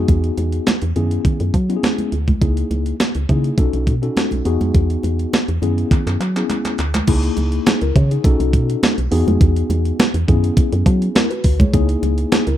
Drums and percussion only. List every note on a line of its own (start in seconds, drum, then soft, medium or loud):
0.08 kick loud
0.08 closed hi-hat medium
0.08 muted conga medium
0.24 closed hi-hat soft
0.37 closed hi-hat medium
0.37 muted conga soft
0.52 closed hi-hat soft
0.67 snare loud
0.67 closed hi-hat medium
0.67 high conga medium
0.82 closed hi-hat medium
0.96 closed hi-hat medium
0.96 low conga medium
1.11 closed hi-hat medium
1.25 kick loud
1.25 closed hi-hat medium
1.25 muted conga soft
1.25 low conga medium
1.40 closed hi-hat medium
1.54 kick medium
1.54 closed hi-hat medium
1.70 closed hi-hat soft
1.83 snare loud
1.83 closed hi-hat medium
1.83 high conga medium
1.98 closed hi-hat soft
1.98 high conga medium
2.12 closed hi-hat medium
2.28 kick medium
2.28 closed hi-hat soft
2.28 high conga medium
2.42 kick loud
2.42 closed hi-hat medium
2.42 muted conga soft
2.57 closed hi-hat soft
2.71 closed hi-hat medium
2.71 muted conga soft
2.86 closed hi-hat soft
3.00 snare loud
3.00 closed hi-hat medium
3.00 high conga medium
3.15 closed hi-hat soft
3.29 kick medium
3.29 closed hi-hat medium
3.29 low conga medium
3.44 closed hi-hat soft
3.58 kick loud
3.58 closed hi-hat medium
3.58 muted conga soft
3.73 closed hi-hat medium
3.87 kick medium
3.87 closed hi-hat medium
3.87 muted conga soft
4.03 closed hi-hat soft
4.17 snare medium
4.17 closed hi-hat medium
4.17 high conga medium
4.31 closed hi-hat soft
4.31 high conga medium
4.45 closed hi-hat medium
4.61 closed hi-hat soft
4.61 high conga medium
4.74 kick loud
4.74 closed hi-hat medium
4.74 muted conga medium
4.90 closed hi-hat soft
5.03 closed hi-hat medium
5.03 muted conga soft
5.19 closed hi-hat soft
5.33 snare loud
5.33 closed hi-hat medium
5.33 high conga medium
5.48 closed hi-hat medium
5.62 closed hi-hat medium
5.62 low conga medium
5.78 closed hi-hat soft
5.91 kick loud
5.91 clap soft
5.91 closed hi-hat medium
5.91 muted conga soft
5.91 low conga medium
6.07 clap soft
6.07 closed hi-hat medium
6.21 clap medium
6.21 closed hi-hat medium
6.21 muted conga soft
6.36 clap medium
6.36 closed hi-hat soft
6.50 clap medium
6.50 closed hi-hat medium
6.50 high conga medium
6.65 clap medium
6.65 closed hi-hat soft
6.65 high conga medium
6.78 clap medium
6.78 closed hi-hat medium
6.94 clap medium
6.94 closed hi-hat soft
6.94 high conga medium
7.07 kick loud
7.07 closed hi-hat medium
7.07 crash loud
7.07 muted conga medium
7.23 closed hi-hat soft
7.37 closed hi-hat medium
7.37 muted conga soft
7.52 closed hi-hat medium
7.66 snare loud
7.66 closed hi-hat medium
7.66 high conga medium
7.81 closed hi-hat medium
7.96 kick medium
7.96 closed hi-hat medium
7.96 low conga medium
8.11 closed hi-hat medium
8.24 kick loud
8.24 closed hi-hat medium
8.24 muted conga medium
8.40 closed hi-hat medium
8.53 kick medium
8.53 closed hi-hat medium
8.53 muted conga soft
8.70 closed hi-hat medium
8.83 snare loud
8.83 closed hi-hat medium
8.83 high conga medium
8.98 closed hi-hat medium
9.12 open hi-hat medium
9.28 closed hi-hat soft
9.28 high conga medium
9.41 kick loud
9.41 closed hi-hat medium
9.41 muted conga medium
9.56 closed hi-hat soft
9.70 closed hi-hat medium
9.70 muted conga soft
9.85 closed hi-hat soft
10.00 snare loud
10.00 closed hi-hat medium
10.00 high conga medium
10.14 closed hi-hat medium
10.28 kick loud
10.28 closed hi-hat medium
10.28 low conga medium
10.44 closed hi-hat medium
10.57 kick loud
10.57 closed hi-hat medium
10.57 muted conga medium
10.72 closed hi-hat medium
10.86 kick medium
10.86 closed hi-hat medium
10.86 muted conga soft
11.02 closed hi-hat medium
11.15 snare loud
11.15 closed hi-hat medium
11.15 high conga medium
11.31 closed hi-hat medium
11.44 kick medium
11.44 open hi-hat medium
11.60 kick loud
11.60 closed hi-hat soft
11.60 high conga medium
11.73 kick loud
11.73 closed hi-hat medium
11.73 muted conga medium
11.89 closed hi-hat medium
12.03 closed hi-hat medium
12.03 muted conga soft
12.18 closed hi-hat medium
12.32 snare loud
12.32 closed hi-hat medium
12.32 high conga medium
12.47 closed hi-hat medium